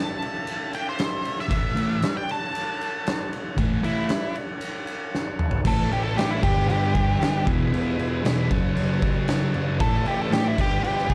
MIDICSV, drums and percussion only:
0, 0, Header, 1, 2, 480
1, 0, Start_track
1, 0, Key_signature, 3, "major"
1, 0, Tempo, 518583
1, 1393, Time_signature, 4, 2, 24, 8
1, 10312, End_track
2, 0, Start_track
2, 0, Title_t, "Drums"
2, 206, Note_on_c, 9, 51, 68
2, 298, Note_off_c, 9, 51, 0
2, 436, Note_on_c, 9, 51, 88
2, 528, Note_off_c, 9, 51, 0
2, 678, Note_on_c, 9, 51, 75
2, 770, Note_off_c, 9, 51, 0
2, 913, Note_on_c, 9, 51, 89
2, 924, Note_on_c, 9, 38, 104
2, 1006, Note_off_c, 9, 51, 0
2, 1017, Note_off_c, 9, 38, 0
2, 1158, Note_on_c, 9, 51, 74
2, 1251, Note_off_c, 9, 51, 0
2, 1290, Note_on_c, 9, 38, 31
2, 1382, Note_off_c, 9, 38, 0
2, 1395, Note_on_c, 9, 36, 107
2, 1397, Note_on_c, 9, 51, 91
2, 1488, Note_off_c, 9, 36, 0
2, 1490, Note_off_c, 9, 51, 0
2, 1637, Note_on_c, 9, 51, 73
2, 1730, Note_off_c, 9, 51, 0
2, 1874, Note_on_c, 9, 51, 97
2, 1885, Note_on_c, 9, 38, 118
2, 1966, Note_off_c, 9, 51, 0
2, 1977, Note_off_c, 9, 38, 0
2, 2122, Note_on_c, 9, 51, 73
2, 2215, Note_off_c, 9, 51, 0
2, 2360, Note_on_c, 9, 51, 89
2, 2453, Note_off_c, 9, 51, 0
2, 2603, Note_on_c, 9, 51, 66
2, 2696, Note_off_c, 9, 51, 0
2, 2837, Note_on_c, 9, 51, 94
2, 2848, Note_on_c, 9, 38, 110
2, 2930, Note_off_c, 9, 51, 0
2, 2941, Note_off_c, 9, 38, 0
2, 3080, Note_on_c, 9, 51, 66
2, 3172, Note_off_c, 9, 51, 0
2, 3312, Note_on_c, 9, 36, 105
2, 3314, Note_on_c, 9, 51, 84
2, 3404, Note_off_c, 9, 36, 0
2, 3407, Note_off_c, 9, 51, 0
2, 3555, Note_on_c, 9, 51, 68
2, 3647, Note_off_c, 9, 51, 0
2, 3784, Note_on_c, 9, 51, 97
2, 3796, Note_on_c, 9, 38, 108
2, 3877, Note_off_c, 9, 51, 0
2, 3888, Note_off_c, 9, 38, 0
2, 4030, Note_on_c, 9, 51, 65
2, 4122, Note_off_c, 9, 51, 0
2, 4265, Note_on_c, 9, 51, 88
2, 4358, Note_off_c, 9, 51, 0
2, 4508, Note_on_c, 9, 51, 78
2, 4601, Note_off_c, 9, 51, 0
2, 4764, Note_on_c, 9, 38, 61
2, 4856, Note_off_c, 9, 38, 0
2, 4991, Note_on_c, 9, 45, 90
2, 5084, Note_off_c, 9, 45, 0
2, 5102, Note_on_c, 9, 43, 92
2, 5194, Note_off_c, 9, 43, 0
2, 5230, Note_on_c, 9, 36, 107
2, 5234, Note_on_c, 9, 49, 127
2, 5234, Note_on_c, 9, 57, 87
2, 5323, Note_off_c, 9, 36, 0
2, 5326, Note_off_c, 9, 49, 0
2, 5326, Note_off_c, 9, 57, 0
2, 5482, Note_on_c, 9, 57, 68
2, 5575, Note_off_c, 9, 57, 0
2, 5719, Note_on_c, 9, 57, 90
2, 5731, Note_on_c, 9, 38, 115
2, 5812, Note_off_c, 9, 57, 0
2, 5823, Note_off_c, 9, 38, 0
2, 5953, Note_on_c, 9, 36, 105
2, 5963, Note_on_c, 9, 57, 104
2, 6046, Note_off_c, 9, 36, 0
2, 6056, Note_off_c, 9, 57, 0
2, 6199, Note_on_c, 9, 57, 85
2, 6292, Note_off_c, 9, 57, 0
2, 6434, Note_on_c, 9, 36, 95
2, 6440, Note_on_c, 9, 57, 61
2, 6526, Note_off_c, 9, 36, 0
2, 6533, Note_off_c, 9, 57, 0
2, 6679, Note_on_c, 9, 57, 76
2, 6690, Note_on_c, 9, 38, 114
2, 6772, Note_off_c, 9, 57, 0
2, 6783, Note_off_c, 9, 38, 0
2, 6914, Note_on_c, 9, 36, 114
2, 6918, Note_on_c, 9, 57, 63
2, 7007, Note_off_c, 9, 36, 0
2, 7011, Note_off_c, 9, 57, 0
2, 7160, Note_on_c, 9, 57, 80
2, 7252, Note_off_c, 9, 57, 0
2, 7397, Note_on_c, 9, 57, 65
2, 7490, Note_off_c, 9, 57, 0
2, 7636, Note_on_c, 9, 57, 92
2, 7647, Note_on_c, 9, 38, 127
2, 7728, Note_off_c, 9, 57, 0
2, 7739, Note_off_c, 9, 38, 0
2, 7875, Note_on_c, 9, 36, 103
2, 7877, Note_on_c, 9, 57, 63
2, 7968, Note_off_c, 9, 36, 0
2, 7970, Note_off_c, 9, 57, 0
2, 8112, Note_on_c, 9, 57, 90
2, 8205, Note_off_c, 9, 57, 0
2, 8352, Note_on_c, 9, 36, 99
2, 8352, Note_on_c, 9, 57, 68
2, 8445, Note_off_c, 9, 36, 0
2, 8445, Note_off_c, 9, 57, 0
2, 8587, Note_on_c, 9, 57, 88
2, 8598, Note_on_c, 9, 38, 122
2, 8679, Note_off_c, 9, 57, 0
2, 8690, Note_off_c, 9, 38, 0
2, 8830, Note_on_c, 9, 57, 63
2, 8922, Note_off_c, 9, 57, 0
2, 9070, Note_on_c, 9, 57, 86
2, 9073, Note_on_c, 9, 36, 114
2, 9163, Note_off_c, 9, 57, 0
2, 9165, Note_off_c, 9, 36, 0
2, 9309, Note_on_c, 9, 57, 66
2, 9402, Note_off_c, 9, 57, 0
2, 9554, Note_on_c, 9, 57, 87
2, 9565, Note_on_c, 9, 38, 126
2, 9647, Note_off_c, 9, 57, 0
2, 9658, Note_off_c, 9, 38, 0
2, 9796, Note_on_c, 9, 36, 111
2, 9802, Note_on_c, 9, 57, 104
2, 9889, Note_off_c, 9, 36, 0
2, 9895, Note_off_c, 9, 57, 0
2, 10036, Note_on_c, 9, 57, 87
2, 10128, Note_off_c, 9, 57, 0
2, 10167, Note_on_c, 9, 38, 33
2, 10260, Note_off_c, 9, 38, 0
2, 10267, Note_on_c, 9, 57, 61
2, 10272, Note_on_c, 9, 36, 90
2, 10312, Note_off_c, 9, 36, 0
2, 10312, Note_off_c, 9, 57, 0
2, 10312, End_track
0, 0, End_of_file